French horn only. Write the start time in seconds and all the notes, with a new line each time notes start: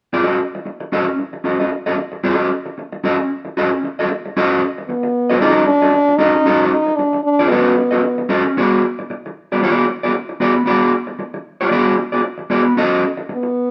4.88 B3
5.40 D#4
5.66 D4
6.17 D#4
6.69 D#4
6.96 D4
7.23 D4
7.49 B3
13.33 B3